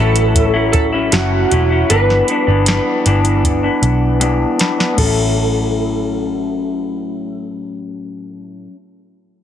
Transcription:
Already playing: picked electric bass A1, clean electric guitar A2 F#3, electric slide guitar A4
0.00 clean electric guitar C#4 E4
0.16 closed hi-hat
0.35 kick, closed hi-hat
0.54 clean electric guitar F#3 C#4 E4
0.73 electric slide guitar A4, kick, closed hi-hat
0.92 clean electric guitar F#3 C#4 E4
1.12 picked electric bass F#1, clean electric guitar A2 F#3 C#4 E4, electric slide guitar F#4, snare, closed hi-hat
1.50 picked electric bass E1, clean electric guitar A2 F#3 C#4 E4, closed hi-hat
1.70 clean electric guitar F#3 C#4 E4
1.90 picked electric bass G1, clean electric guitar G2 E3 B3 D4, electric slide guitar B4, closed hi-hat
2.10 snare
2.28 clean electric guitar G2 E3 B3 D4, closed hi-hat
2.47 picked electric bass G1, clean electric guitar E3 B3 D4
2.66 clean electric guitar G2 E3 B3 D4, snare, closed hi-hat
3.06 picked electric bass G1, clean electric guitar G2 E3 B3 D4, closed hi-hat
3.25 closed hi-hat
3.36 electric slide guitar A4
3.44 kick, closed hi-hat
3.63 clean electric guitar E3 B3 D4
3.82 picked electric bass B1, closed hi-hat
4.20 clean electric guitar G2 E3 B3 D4, closed hi-hat
4.58 clean electric guitar G2 E3 B3 D4, snare, closed hi-hat
4.78 clean electric guitar E3 B3 D4, snare
4.94 clean electric guitar A2
4.98 picked electric bass A1, electric slide guitar A4, kick, crash
5.03 clean electric guitar C#4 E4

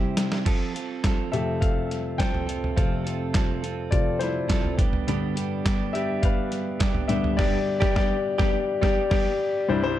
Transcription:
Already playing: grand piano C3 E3 G3, clean electric guitar C4 E4 G4
0.17 snare, closed hi-hat
0.32 snare
0.45 clean electric guitar F3 C4 F4 A4, kick, closed hi-hat, crash
0.75 clean electric guitar C4 F4 A4, closed hi-hat
1.04 clean electric guitar F3 C4 F4 A4, kick, snare, clap, closed hi-hat
1.32 grand piano F2 C3 A3 G4 E5, clean electric guitar C4 F4 A4, closed hi-hat
1.61 grand piano A4 F5, kick, closed hi-hat
1.91 snare, closed hi-hat
2.18 clean electric guitar F3 C4 F4 A4, grand piano C5 G5, kick, snare, clap, closed hi-hat
2.35 floor tom
2.47 clean electric guitar C4 F4 A4, closed hi-hat
2.64 floor tom
2.76 grand piano F2 C3 A3 A4 F5, clean electric guitar F3 C4 F4 A4, kick, closed hi-hat
3.04 clean electric guitar C4 F4 A4, closed hi-hat
3.33 clean electric guitar F3 C4 F4 A4, kick, snare, clap, closed hi-hat
3.62 clean electric guitar C4 F4 A4, closed hi-hat
3.91 grand piano F2 C3 A3 F4 D5, kick, closed hi-hat
4.19 grand piano E4 C5, snare, closed hi-hat
4.49 clean electric guitar F3 C4 F4 A4, kick, snare, clap, closed hi-hat
4.64 floor tom
4.77 clean electric guitar G3 B3 D4 G4, kick, closed hi-hat
4.93 floor tom
5.07 clean electric guitar G2 D3 G3 B3 D4 G4, grand piano G2 D3 B3, closed hi-hat
5.36 clean electric guitar G3 B3 D4 G4, closed hi-hat
5.65 clean electric guitar G3 B3 D4 G4, kick, snare, clap, closed hi-hat
5.93 clean electric guitar G3 B3 D4 G4, grand piano G4 E5, closed hi-hat
6.22 grand piano B4 F5, kick, closed hi-hat
6.52 snare, closed hi-hat
6.80 clean electric guitar G3 B3 D4 G4, kick, snare, clap, closed hi-hat
6.94 floor tom
7.08 grand piano G2 D3 B3 G4 E5, clean electric guitar G3 B3 D4 G4, closed hi-hat
7.24 floor tom
7.37 clean electric guitar G2 D3 G3 B3 D4 G4, grand piano G4 D5, kick, snare, crash
7.80 clean electric guitar G3 B3 D4 G4, grand piano G4 D5, kick, snare
7.95 clean electric guitar G3 B3 D4 G4, grand piano G4 D5, kick, snare
8.38 clean electric guitar G3 B3 D4 G4, grand piano G4 D5, kick, snare
8.81 clean electric guitar G3 B3 D4 G4, grand piano G4 D5, kick, snare
9.10 clean electric guitar G3 B3 D4, grand piano G4 D5, kick, snare, crash
9.14 clean electric guitar G4
9.69 grand piano C2 G2 G3 D4 E4 C5
9.82 grand piano G3 D4 E4 C5

